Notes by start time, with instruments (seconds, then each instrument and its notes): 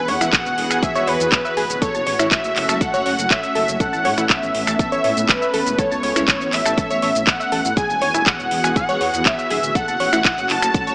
Already playing: analog synth pad E3 B3 F#4 G#4
0.08 detuned saw bass E2, synth pluck C#5 C#6, analog synth lead F#5, open hi-hat
0.21 detuned saw bass E1, synth pluck E4 E5, finger snap, closed hi-hat, shaker
0.33 kick, clap, closed hi-hat, shaker
0.46 detuned saw bass E1, shaker
0.58 detuned saw bass E1, open hi-hat
0.71 detuned saw bass E1, synth pluck G#5 G#6, finger snap, closed hi-hat, shaker
0.83 synth pluck G#4 G#5, analog synth lead E5, kick, closed hi-hat, shaker
0.95 detuned saw bass E1, synth pluck C#5 C#6, closed hi-hat, shaker
1.07 detuned saw bass E2, analog synth lead B4, synth pluck C#5 C#6, open hi-hat
1.20 detuned saw bass E2, closed hi-hat, shaker
1.32 kick, clap, closed hi-hat, shaker
1.45 synth pluck E5 E6, shaker
1.57 detuned saw bass D1, synth pluck G#4 G#5, open hi-hat
1.70 detuned saw bass D1, closed hi-hat, shaker
1.82 analog synth pad A3 C#4 F#4, synth pluck A4 A5, analog synth lead C#5, kick, closed hi-hat, shaker
1.95 detuned saw bass F#1, synth pluck A5 A6, closed hi-hat, shaker
2.07 detuned saw bass A1, synth pluck C#5 C#6, open hi-hat
2.19 detuned saw bass A1, synth pluck E4 E5, finger snap, closed hi-hat, shaker
2.31 analog synth lead E5, kick, clap, closed hi-hat, shaker
2.44 detuned saw bass F#1, closed hi-hat, shaker
2.56 detuned saw bass F#1, clap, open hi-hat
2.69 detuned saw bass F#1, synth pluck A5 A6, finger snap, closed hi-hat, shaker
2.81 synth pluck A4 A5, analog synth lead F#5, kick, closed hi-hat, shaker
2.94 detuned saw bass F#1, synth pluck C#5 C#6, closed hi-hat, shaker
3.06 detuned saw bass F#1, synth pluck C#5 C#6, open hi-hat
3.19 detuned saw bass F#1, closed hi-hat, shaker
3.31 analog synth lead E5, kick, clap, closed hi-hat, shaker
3.43 synth pluck E5 E6, closed hi-hat, shaker
3.55 detuned saw bass F#1, synth pluck A4 A5, open hi-hat
3.68 detuned saw bass F#1, closed hi-hat, shaker
3.80 analog synth pad B3, synth pluck A4 A5, analog synth lead F#5, kick, closed hi-hat, shaker
3.93 detuned saw bass A1, synth pluck A5 A6, shaker
4.05 detuned saw bass A2, synth pluck C#5 C#6, open hi-hat
4.18 detuned saw bass A1, synth pluck E4 E5, finger snap, closed hi-hat, shaker
4.30 analog synth lead E5, kick, clap, closed hi-hat, shaker
4.42 detuned saw bass A1, shaker
4.54 detuned saw bass A1, open hi-hat
4.67 detuned saw bass A1, synth pluck A5 A6, finger snap, closed hi-hat, shaker
4.79 synth pluck A4 A5, analog synth lead E5, kick, closed hi-hat, shaker
4.92 detuned saw bass A1, synth pluck C#5 C#6, closed hi-hat, shaker
5.04 detuned saw bass A2, synth pluck C#5 C#6, open hi-hat
5.17 detuned saw bass A2, closed hi-hat, shaker
5.29 analog synth lead B4, kick, clap, closed hi-hat, shaker
5.42 synth pluck E5 E6, shaker
5.54 detuned saw bass E1, synth pluck A4 A5, open hi-hat
5.66 detuned saw bass E1, closed hi-hat, shaker
5.78 synth pluck A4 A5, analog synth lead C#5, kick, closed hi-hat, shaker
5.91 detuned saw bass C#2, synth pluck A5 A6, shaker
6.03 detuned saw bass C#2, synth pluck C#5 C#6, open hi-hat
6.16 detuned saw bass C#2, synth pluck E4 E5, finger snap, closed hi-hat, shaker
6.28 kick, clap, closed hi-hat, shaker
6.41 detuned saw bass A1, shaker
6.53 detuned saw bass A1, analog synth lead E5, clap, open hi-hat
6.66 detuned saw bass A1, synth pluck A5 A6, finger snap, closed hi-hat, shaker
6.78 synth pluck A4 A5, kick, closed hi-hat, shaker
6.90 detuned saw bass A1, synth pluck C#5 C#6, closed hi-hat, shaker
7.02 detuned saw bass A1, synth pluck C#5 C#6, open hi-hat
7.15 detuned saw bass A1, closed hi-hat, shaker
7.27 analog synth lead F#5, kick, clap, closed hi-hat, shaker
7.40 synth pluck E5 E6, shaker
7.52 detuned saw bass A1, synth pluck A4 A5, open hi-hat
7.65 detuned saw bass A1, closed hi-hat, shaker
7.77 analog synth pad E3 B3 F#4 G#4, synth pluck G#4 G#5, analog synth lead G#5, kick, closed hi-hat, shaker
7.90 detuned saw bass E1, synth pluck G#5 G#6, shaker
8.02 detuned saw bass E2, synth pluck C#5 C#6, open hi-hat
8.14 detuned saw bass E1, synth pluck E4 E5, finger snap, closed hi-hat, shaker
8.26 analog synth lead F#5, kick, clap, closed hi-hat, shaker
8.39 detuned saw bass E1, shaker
8.51 detuned saw bass E1, open hi-hat
8.64 detuned saw bass E1, synth pluck G#5 G#6, finger snap, closed hi-hat, shaker
8.76 synth pluck G#4 G#5, analog synth lead F#5, kick, closed hi-hat, shaker
8.89 detuned saw bass E1, synth pluck C#5 C#6, closed hi-hat, shaker
9.01 detuned saw bass E2, synth pluck C#5 C#6, open hi-hat
9.14 detuned saw bass E2, closed hi-hat, shaker
9.26 analog synth lead E5, kick, clap, closed hi-hat, shaker
9.38 synth pluck E5 E6, shaker
9.50 detuned saw bass D1, synth pluck G#4 G#5, open hi-hat
9.63 detuned saw bass D1, closed hi-hat, shaker
9.75 analog synth pad A3 C#4 F#4, synth pluck A4 A5, analog synth lead F#5, kick, closed hi-hat, shaker
9.88 detuned saw bass F#1, synth pluck A5 A6, closed hi-hat, shaker
10.00 detuned saw bass A1, synth pluck C#5 C#6, open hi-hat
10.13 detuned saw bass A1, synth pluck E4 E5, finger snap, closed hi-hat, shaker
10.25 kick, clap, closed hi-hat, shaker
10.38 detuned saw bass F#1, shaker
10.50 detuned saw bass F#1, analog synth lead A5, clap, open hi-hat
10.62 detuned saw bass F#1, synth pluck A5 A6, finger snap, closed hi-hat, shaker
10.74 synth pluck A4 A5, kick, closed hi-hat, shaker
10.87 detuned saw bass F#1, synth pluck C#5 C#6, closed hi-hat, shaker